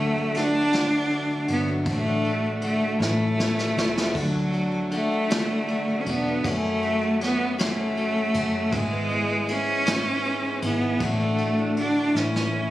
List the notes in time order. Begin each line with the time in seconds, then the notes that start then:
Already playing: D2 D3 F#3 A3 D4 F#4
0.00 A3 D4
0.16 A3
0.34 D3 A3 D4 F#4, snare, ride
0.38 D4
0.54 F#3
0.72 D3 A3 D4 F#4, snare, ride
0.92 A3
1.09 D3 F#3 A3 D4 F#4, ride
1.31 A3
1.47 G1 A3 D4 F#4, ride
1.52 B3
1.68 F#3
1.85 A1 A2 D3 A3 D4 F#4, kick, ride
1.91 A3
2.06 D4
2.23 A3 D4 F#4, ride
2.44 D4
2.61 D3 A3 D4 F#4, ride
2.66 A3
2.82 A3
2.99 A1 A2 F#3 A3 C#4 E4, snare
3.03 A3
3.18 C#4
3.37 F#3 A3 C#4 E4, snare
3.56 C#4, snare
3.75 C#2 A3 C#4 E4, snare
3.95 F#3, snare
4.13 D2 D3 A3 D4 F#4, kick, crash
4.19 F#3
4.34 A3
4.52 F#3 A3 D4 F#4, ride
4.72 A3
4.91 D3 A3 D4 F#4, ride
4.95 A3
5.11 F#3
5.30 D3 A3 D4 F#4, snare, ride
5.50 A3
5.68 D3 F#3 A3 D4 F#4, ride
5.88 A3
6.01 C#4
6.06 E1 A3 D4 F#4, ride
6.10 B3
6.27 F#3
6.44 F#1 F#2 C#3 F#3 A3 C#4 F#4, kick, ride
6.48 A3
6.65 A3
6.82 F#3 A3 C#4 F#4, ride
7.02 A3
7.20 F#3 A3 C#4 F#4, snare, ride
7.24 B3
7.39 F#3
7.59 F#2 C#3 F#3 A3 C#4 F#4, snare, ride
7.77 A3
7.96 F#3 A3 C#4 F#4, ride
8.16 A3
8.34 F#1 F#3 A3 C#4 F#4, ride
8.54 F#3
8.71 G#1 G#2 G#3 B3 E4 G#4, kick, ride
8.76 G#3
8.91 B3
9.10 G#3 B3 E4 G#4, ride
9.30 B3
9.47 G#3 B3 E4 G#4, ride
9.52 C#4
9.68 G#3
9.86 G#2 G#3 B3 E4 G#4, snare, ride
10.05 B3
10.24 G#3 B3 E4 G#4, ride
10.45 B3
10.62 G#1 B3 E4 G#4, ride
10.82 G#3
11.00 A1 A2 D3 A3 D4 F#4, kick, ride
11.20 D4
11.38 A3 D4 F#4, ride
11.58 D4
11.77 D3 A3 D4 F#4, ride
11.96 A3
12.15 A1 A2 E3 A3 C#4 E4, snare
12.35 C#4, snare
12.53 E3 A3 C#4 E4